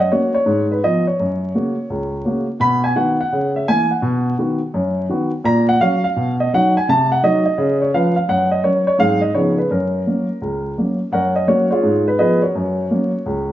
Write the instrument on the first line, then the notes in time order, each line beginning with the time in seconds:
upright piano
0.00 D#5
0.12 A#3 C#4 F#4 C#5
0.35 C#5
0.46 G#2
0.72 B4
0.84 F3 B3 F4 D#5
1.07 C#5
1.20 F#2
1.54 C#3 A#3 F#4
1.90 C#2
2.25 C#3 A#3 F#4
2.60 B2 B5
2.84 G#5
2.96 D#3 B3 F#4 F#5
3.21 F#5
3.32 C#3
3.56 E5
3.68 E3 A#3 A#4 G#5
3.91 F#5
4.02 B2
4.39 D#3 B3 F#4
4.74 F#2
5.10 D#3 B3 F#4
5.44 A#2 A#5
5.69 F#5
5.81 F#3 C#4 F#4 F5
6.04 F5
6.16 B2
6.40 D#5
6.53 F#3 D#4 F#4 F#5
6.77 G#5
6.89 C3 A5
7.12 F#5
7.23 F#3 D#4 F#4 D#5
7.46 D#5
7.58 C#3
7.82 C#5
7.94 F3 C#4 B4 F5
8.16 F5
8.28 F#2 F#5
8.51 D#5
8.63 F#3 C#4 A#4 C#5
8.87 C#5
8.98 G#2 F#3 C4 G#4 F5
9.21 D#5
9.35 C#3 F3 B3 D#4 C#5
9.58 B4
9.70 F#2 A#4
10.06 F#3 A#3 C#4
10.41 C#2
10.78 F#3 A#3 C#4
11.12 F#2 A#4 C#5 F#5
11.36 D#5
11.47 F#3 A#3 C#4 F#4 A#4 C#5
11.71 F4 G#4 C#5
11.83 G#2
12.08 B4
12.19 F3 B3 F4 G#4 B4 D#5
12.42 F#4 A#4 C#5
12.55 F#2
12.91 F#3 A#3 C#4
13.26 C#2